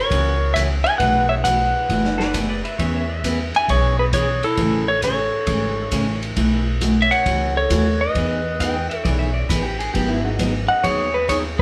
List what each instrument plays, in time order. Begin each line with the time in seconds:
Already playing: clarinet A#4, electric slide guitar C#5
0.10 upright bass C#2, steel-string acoustic guitar C#3 E3 A#3 C#4 F#4, kick, ride
0.54 steel-string acoustic guitar C#3 E3 A#3 C#4 F#4, clarinet C#5, electric slide guitar E5, kick, hi-hat pedal, ride
0.84 clarinet E5, electric slide guitar G#5, ride
0.98 upright bass B1, steel-string acoustic guitar B2 E3 A3 E4 F#4, clarinet B4, electric slide guitar F#5, kick, ride
1.29 clarinet C#5, electric slide guitar E5
1.44 steel-string acoustic guitar B2 E3 A3 E4 F#4, clarinet B4, electric slide guitar F#5, kick, hi-hat pedal, ride
1.89 upright bass F#1, steel-string acoustic guitar B2 E3 A3 E4 F#4, kick, ride
2.04 snare
2.18 pedal steel guitar B4 D5, snare
2.34 steel-string acoustic guitar B2 E3 A3 E4 F#4, pedal steel guitar B4 D5, kick, hi-hat pedal, ride
2.49 pedal steel guitar B4 D5
2.64 pedal steel guitar B4 E5, ride
2.78 upright bass E2, steel-string acoustic guitar E3 B3 C#4 G#4, pedal steel guitar C#5 E5, kick, ride
2.94 pedal steel guitar C#5 E5
3.09 pedal steel guitar E5
3.24 steel-string acoustic guitar E3 B3 C#4 G#4, kick, hi-hat pedal, ride
3.54 clarinet E5, electric slide guitar G#5, ride
3.68 upright bass B1, steel-string acoustic guitar E3 B3 C#4 G#4, clarinet G#4, electric slide guitar C#5, kick, ride
3.99 clarinet G#4, electric slide guitar B4
4.13 steel-string acoustic guitar E3 B3 C#4 G#4, clarinet G#4, electric slide guitar C#5, kick, hi-hat pedal, ride
4.43 clarinet E4, electric slide guitar A4, ride
4.57 upright bass A1, steel-string acoustic guitar C#3 E3 A3 C#4 G#4, kick, ride
4.88 clarinet A4, electric slide guitar C#5
5.02 steel-string acoustic guitar C#3 E3 A3 C#4 G#4, clarinet A4, electric slide guitar C#5, kick, hi-hat pedal, ride
5.46 upright bass G#1, steel-string acoustic guitar C#3 E3 A3 C#4 G#4, kick, ride
5.91 upright bass A1, steel-string acoustic guitar C#3 E3 A3 C#4 G#4, kick, hi-hat pedal, ride
6.22 ride
6.36 upright bass B1, steel-string acoustic guitar B2 E3 A3 E4 F#4, kick, ride
6.81 steel-string acoustic guitar B2 E3 A3 E4 F#4, kick, hi-hat pedal, ride
7.02 clarinet C#5, electric slide guitar E5
7.11 clarinet C#5, electric slide guitar F#5, ride
7.25 upright bass C#2, steel-string acoustic guitar B2 E3 A3 E4 F#4, kick, ride
7.56 clarinet A4, electric slide guitar C#5
7.70 upright bass D#2, steel-string acoustic guitar B2 E3 A3 E4 F#4, kick, hi-hat pedal, ride
8.01 clarinet B4, electric slide guitar D#5
8.15 upright bass E2, steel-string acoustic guitar E3 B3 D#4 G#4, kick, ride
8.60 steel-string acoustic guitar E3 B3 D#4 G#4, pedal steel guitar G5, kick, hi-hat pedal, ride
8.90 pedal steel guitar E5, ride
8.97 clarinet A4, electric slide guitar C#5
9.04 upright bass B1, steel-string acoustic guitar E3 B3 D#4 G#4, pedal steel guitar D5, kick, ride
9.19 pedal steel guitar E5
9.34 pedal steel guitar D5
9.49 upright bass A1, steel-string acoustic guitar E3 B3 D#4 G#4, pedal steel guitar B4, kick, hi-hat pedal, ride
9.63 pedal steel guitar G4
9.79 pedal steel guitar G#4, ride
9.94 upright bass G#1, steel-string acoustic guitar D#3 F#3 B3 D#4 G#4, pedal steel guitar G4, kick, ride
10.09 pedal steel guitar E4
10.24 honky-tonk piano G#3 B3 D#4 F#4, pedal steel guitar D#4
10.39 steel-string acoustic guitar D#3 F#3 B3 D#4 G#4, kick, hi-hat pedal, ride
10.68 clarinet D#5, electric slide guitar F#5
10.83 upright bass D#2, steel-string acoustic guitar D#3 F#3 B3 D#4 G#4, clarinet G#4, electric slide guitar C#5, kick, ride
11.14 clarinet G#4, electric slide guitar B4
11.28 steel-string acoustic guitar D#3 F#3 B3 D#4 G#4, clarinet G#4, electric slide guitar C#5, kick, hi-hat pedal, ride
11.58 clarinet G#4